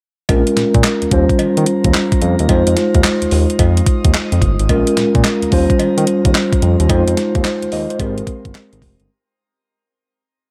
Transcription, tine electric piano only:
0, 0, Header, 1, 2, 480
1, 0, Start_track
1, 0, Tempo, 550459
1, 252, Time_signature, 4, 2, 24, 8
1, 9162, End_track
2, 0, Start_track
2, 0, Title_t, "Tine electric piano"
2, 0, Program_c, 0, 4
2, 254, Note_on_c, 0, 56, 76
2, 257, Note_on_c, 0, 61, 67
2, 261, Note_on_c, 0, 65, 68
2, 265, Note_on_c, 0, 70, 82
2, 393, Control_c, 0, 64, 127
2, 964, Note_off_c, 0, 61, 0
2, 968, Note_on_c, 0, 55, 77
2, 971, Note_off_c, 0, 65, 0
2, 973, Note_off_c, 0, 56, 0
2, 975, Note_on_c, 0, 61, 67
2, 978, Note_off_c, 0, 70, 0
2, 982, Note_on_c, 0, 65, 70
2, 984, Control_c, 0, 64, 0
2, 989, Note_on_c, 0, 72, 83
2, 1151, Control_c, 0, 64, 127
2, 2146, Note_off_c, 0, 55, 0
2, 2150, Note_off_c, 0, 61, 0
2, 2153, Note_off_c, 0, 65, 0
2, 2157, Note_off_c, 0, 72, 0
2, 2168, Note_on_c, 0, 56, 75
2, 2174, Note_on_c, 0, 63, 65
2, 2181, Note_on_c, 0, 65, 69
2, 2183, Control_c, 0, 64, 0
2, 2189, Note_on_c, 0, 72, 78
2, 2358, Control_c, 0, 64, 127
2, 4055, Note_off_c, 0, 56, 0
2, 4058, Note_off_c, 0, 63, 0
2, 4062, Note_off_c, 0, 65, 0
2, 4066, Note_off_c, 0, 72, 0
2, 4094, Note_on_c, 0, 56, 77
2, 4097, Note_on_c, 0, 61, 72
2, 4100, Note_on_c, 0, 65, 72
2, 4104, Control_c, 0, 64, 0
2, 4104, Note_on_c, 0, 70, 90
2, 4272, Control_c, 0, 64, 127
2, 4803, Note_off_c, 0, 61, 0
2, 4806, Note_on_c, 0, 55, 77
2, 4810, Note_off_c, 0, 65, 0
2, 4813, Note_off_c, 0, 56, 0
2, 4813, Note_on_c, 0, 61, 70
2, 4818, Note_off_c, 0, 70, 0
2, 4820, Note_on_c, 0, 65, 70
2, 4822, Control_c, 0, 64, 0
2, 4827, Note_on_c, 0, 72, 88
2, 4982, Control_c, 0, 64, 127
2, 5985, Note_off_c, 0, 55, 0
2, 5989, Note_off_c, 0, 61, 0
2, 5992, Note_off_c, 0, 65, 0
2, 5996, Note_off_c, 0, 72, 0
2, 6007, Note_on_c, 0, 56, 76
2, 6015, Note_on_c, 0, 63, 69
2, 6021, Note_on_c, 0, 65, 66
2, 6023, Control_c, 0, 64, 0
2, 6028, Note_on_c, 0, 72, 84
2, 6186, Control_c, 0, 64, 127
2, 6485, Note_off_c, 0, 72, 0
2, 6496, Note_on_c, 0, 72, 70
2, 6722, Note_off_c, 0, 72, 0
2, 6737, Note_on_c, 0, 75, 74
2, 6882, Note_off_c, 0, 75, 0
2, 6893, Note_on_c, 0, 72, 62
2, 6951, Note_off_c, 0, 56, 0
2, 6954, Note_off_c, 0, 63, 0
2, 6958, Note_off_c, 0, 65, 0
2, 6966, Note_on_c, 0, 56, 68
2, 6973, Note_on_c, 0, 60, 71
2, 6980, Note_on_c, 0, 67, 62
2, 6984, Control_c, 0, 64, 0
2, 6987, Note_on_c, 0, 70, 74
2, 7118, Note_off_c, 0, 72, 0
2, 7136, Control_c, 0, 64, 127
2, 7910, Note_off_c, 0, 56, 0
2, 7914, Note_off_c, 0, 60, 0
2, 7917, Note_off_c, 0, 67, 0
2, 7921, Note_off_c, 0, 70, 0
2, 7942, Control_c, 0, 64, 0
2, 9162, End_track
0, 0, End_of_file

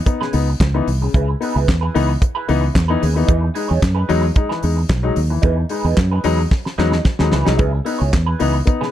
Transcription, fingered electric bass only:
0, 0, Header, 1, 2, 480
1, 0, Start_track
1, 0, Key_signature, 4, "minor"
1, 0, Tempo, 538455
1, 1014, Time_signature, 4, 2, 24, 8
1, 7946, End_track
2, 0, Start_track
2, 0, Title_t, "Fingered electric bass"
2, 0, Program_c, 0, 33
2, 303, Note_on_c, 0, 37, 77
2, 476, Note_off_c, 0, 37, 0
2, 538, Note_on_c, 0, 37, 82
2, 713, Note_off_c, 0, 37, 0
2, 781, Note_on_c, 0, 36, 77
2, 955, Note_off_c, 0, 36, 0
2, 1018, Note_on_c, 0, 37, 107
2, 1192, Note_off_c, 0, 37, 0
2, 1390, Note_on_c, 0, 37, 96
2, 1469, Note_off_c, 0, 37, 0
2, 1502, Note_on_c, 0, 40, 87
2, 1675, Note_off_c, 0, 40, 0
2, 1746, Note_on_c, 0, 37, 84
2, 1917, Note_off_c, 0, 37, 0
2, 2224, Note_on_c, 0, 37, 88
2, 2396, Note_off_c, 0, 37, 0
2, 2456, Note_on_c, 0, 40, 84
2, 2631, Note_off_c, 0, 40, 0
2, 2703, Note_on_c, 0, 39, 86
2, 2875, Note_off_c, 0, 39, 0
2, 2931, Note_on_c, 0, 40, 92
2, 3108, Note_off_c, 0, 40, 0
2, 3306, Note_on_c, 0, 40, 97
2, 3386, Note_off_c, 0, 40, 0
2, 3410, Note_on_c, 0, 42, 90
2, 3587, Note_off_c, 0, 42, 0
2, 3657, Note_on_c, 0, 40, 72
2, 3831, Note_off_c, 0, 40, 0
2, 4133, Note_on_c, 0, 40, 81
2, 4309, Note_off_c, 0, 40, 0
2, 4364, Note_on_c, 0, 35, 81
2, 4543, Note_off_c, 0, 35, 0
2, 4607, Note_on_c, 0, 39, 80
2, 4785, Note_off_c, 0, 39, 0
2, 4843, Note_on_c, 0, 40, 93
2, 5022, Note_off_c, 0, 40, 0
2, 5212, Note_on_c, 0, 40, 94
2, 5297, Note_off_c, 0, 40, 0
2, 5327, Note_on_c, 0, 42, 97
2, 5505, Note_off_c, 0, 42, 0
2, 5571, Note_on_c, 0, 40, 78
2, 5747, Note_off_c, 0, 40, 0
2, 6049, Note_on_c, 0, 40, 83
2, 6226, Note_off_c, 0, 40, 0
2, 6421, Note_on_c, 0, 39, 85
2, 6503, Note_off_c, 0, 39, 0
2, 6534, Note_on_c, 0, 37, 77
2, 6627, Note_off_c, 0, 37, 0
2, 6667, Note_on_c, 0, 36, 93
2, 6770, Note_off_c, 0, 36, 0
2, 6770, Note_on_c, 0, 37, 100
2, 6947, Note_off_c, 0, 37, 0
2, 7145, Note_on_c, 0, 37, 94
2, 7225, Note_off_c, 0, 37, 0
2, 7254, Note_on_c, 0, 40, 87
2, 7429, Note_off_c, 0, 40, 0
2, 7497, Note_on_c, 0, 37, 73
2, 7671, Note_off_c, 0, 37, 0
2, 7946, End_track
0, 0, End_of_file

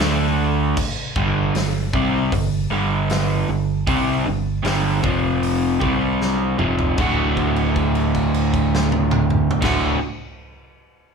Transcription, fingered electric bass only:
0, 0, Header, 1, 2, 480
1, 0, Start_track
1, 0, Tempo, 776197
1, 473, Time_signature, 4, 2, 24, 8
1, 6893, End_track
2, 0, Start_track
2, 0, Title_t, "Fingered electric bass"
2, 0, Program_c, 0, 33
2, 0, Note_on_c, 0, 38, 96
2, 450, Note_off_c, 0, 38, 0
2, 716, Note_on_c, 0, 31, 106
2, 938, Note_off_c, 0, 31, 0
2, 950, Note_on_c, 0, 31, 83
2, 1175, Note_off_c, 0, 31, 0
2, 1197, Note_on_c, 0, 36, 93
2, 1419, Note_off_c, 0, 36, 0
2, 1436, Note_on_c, 0, 31, 86
2, 1659, Note_off_c, 0, 31, 0
2, 1668, Note_on_c, 0, 31, 100
2, 2127, Note_off_c, 0, 31, 0
2, 2151, Note_on_c, 0, 31, 84
2, 2376, Note_off_c, 0, 31, 0
2, 2396, Note_on_c, 0, 36, 102
2, 2619, Note_off_c, 0, 36, 0
2, 2634, Note_on_c, 0, 31, 82
2, 2858, Note_off_c, 0, 31, 0
2, 2875, Note_on_c, 0, 31, 103
2, 3098, Note_off_c, 0, 31, 0
2, 3118, Note_on_c, 0, 29, 100
2, 3572, Note_off_c, 0, 29, 0
2, 3599, Note_on_c, 0, 36, 99
2, 4053, Note_off_c, 0, 36, 0
2, 4073, Note_on_c, 0, 29, 87
2, 4298, Note_off_c, 0, 29, 0
2, 4316, Note_on_c, 0, 26, 103
2, 5866, Note_off_c, 0, 26, 0
2, 5953, Note_on_c, 0, 26, 99
2, 6152, Note_off_c, 0, 26, 0
2, 6893, End_track
0, 0, End_of_file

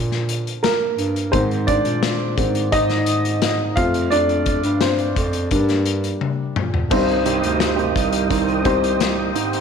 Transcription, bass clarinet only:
0, 0, Header, 1, 2, 480
1, 0, Start_track
1, 0, Key_signature, -3, "minor"
1, 0, Tempo, 696864
1, 920, Time_signature, 4, 2, 24, 8
1, 6616, End_track
2, 0, Start_track
2, 0, Title_t, "Bass clarinet"
2, 0, Program_c, 0, 71
2, 0, Note_on_c, 0, 46, 85
2, 464, Note_off_c, 0, 46, 0
2, 673, Note_on_c, 0, 43, 83
2, 899, Note_off_c, 0, 43, 0
2, 917, Note_on_c, 0, 44, 89
2, 1253, Note_off_c, 0, 44, 0
2, 1276, Note_on_c, 0, 46, 75
2, 1612, Note_off_c, 0, 46, 0
2, 1634, Note_on_c, 0, 44, 94
2, 2569, Note_off_c, 0, 44, 0
2, 2595, Note_on_c, 0, 41, 86
2, 2820, Note_off_c, 0, 41, 0
2, 2835, Note_on_c, 0, 41, 83
2, 3172, Note_off_c, 0, 41, 0
2, 3195, Note_on_c, 0, 43, 85
2, 3532, Note_off_c, 0, 43, 0
2, 3557, Note_on_c, 0, 41, 91
2, 3782, Note_off_c, 0, 41, 0
2, 3798, Note_on_c, 0, 43, 96
2, 4252, Note_off_c, 0, 43, 0
2, 4520, Note_on_c, 0, 46, 71
2, 4743, Note_off_c, 0, 46, 0
2, 4759, Note_on_c, 0, 36, 89
2, 5095, Note_off_c, 0, 36, 0
2, 5119, Note_on_c, 0, 38, 83
2, 5455, Note_off_c, 0, 38, 0
2, 5480, Note_on_c, 0, 36, 97
2, 6414, Note_off_c, 0, 36, 0
2, 6442, Note_on_c, 0, 44, 69
2, 6616, Note_off_c, 0, 44, 0
2, 6616, End_track
0, 0, End_of_file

